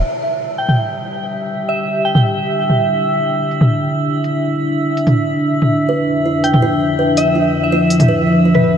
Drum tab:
HH |------o-------o-|------oo--------|------o-------o-|------oo--------|
T2 |-------o--------|-------o-----o--|-------o--------|-------o-----o--|

HH |------o-------o-|------oo--------|
T2 |-------o--------|-------o-----o--|